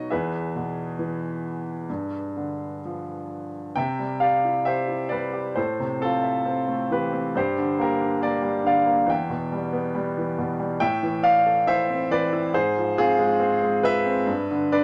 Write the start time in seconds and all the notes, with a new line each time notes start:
Already playing: B2 F#3 D#4 F#4 C#5 D#5
0.10 E2 G#4 B4 E5
0.56 B2
0.99 E3
1.90 G2
2.37 D3
2.85 F3
3.76 C3 E5 G5
3.99 G3
4.20 G4 D5 F5
4.45 E4
4.65 G4 C5 E5
4.88 E4
5.09 G3 B4 D5
5.33 G4
5.56 A2 A4 C5
5.80 C3
6.00 C4 F4 A4
6.23 E5
6.45 C4
6.68 A3
6.91 E3 G4 B4
7.13 C4
7.35 G2 G4 C5
7.58 D3
7.79 A#3 A#4
7.83 G4
8.00 D4
8.21 A#3 A#4 D5
8.42 G3
8.64 D3 D5 F5
8.86 A#3
9.06 E2 E5 G5
9.29 B2
9.52 G3
9.73 B3
9.95 G3
10.18 E3
10.38 B2
10.60 G3
10.80 A2 E5 G5
11.03 E3
11.23 D5 F5
11.46 A4
11.67 E4 C5 E5
11.90 C4
12.11 E3 B4 D5
12.33 E4
12.53 G#2 G#4 C5
12.77 F3
12.97 C4 F4 G#4
13.19 G#3
13.40 C4
13.62 G#3
13.83 F3 B4 E5
14.06 C4
14.27 G2
14.51 D3
14.72 D4 B4 D5